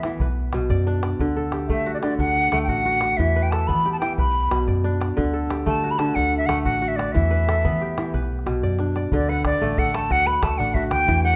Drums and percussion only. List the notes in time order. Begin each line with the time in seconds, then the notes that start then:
0.03 calabash click
0.12 calabash click
0.20 calabash thump
0.53 calabash click
0.70 calabash thump, calabash click
0.87 calabash click
1.03 calabash click
1.19 calabash thump
1.52 calabash click
1.69 calabash thump
2.03 calabash click
2.19 calabash thump
2.44 calabash click
2.52 calabash click
2.68 calabash thump
2.77 calabash click
3.01 calabash click
3.18 calabash thump
3.52 calabash click
3.69 calabash thump
4.02 calabash click
4.18 calabash thump
4.43 calabash click
4.51 calabash click
4.60 calabash click
4.68 calabash thump
4.77 calabash click
5.01 calabash click
5.18 calabash thump
5.50 calabash click
5.66 calabash thump
5.99 calabash click
6.16 calabash thump
6.41 calabash click
6.49 calabash click
6.58 calabash click
6.65 calabash thump
6.75 calabash click
6.99 calabash click
7.16 calabash thump
7.49 calabash click
7.65 calabash thump
7.81 calabash click
7.98 calabash click
8.14 calabash thump, calabash click
8.22 calabash click
8.39 calabash click
8.47 calabash click
8.55 calabash click
8.62 calabash thump
8.79 calabash click
8.96 calabash click
9.12 calabash thump
9.45 calabash thump, calabash click
9.70 calabash click
9.78 calabash thump, calabash click
9.94 calabash click
10.11 calabash thump
10.43 calabash thump, calabash click
10.75 calabash thump
10.83 calabash click
10.91 calabash click
11.00 calabash click
11.08 calabash thump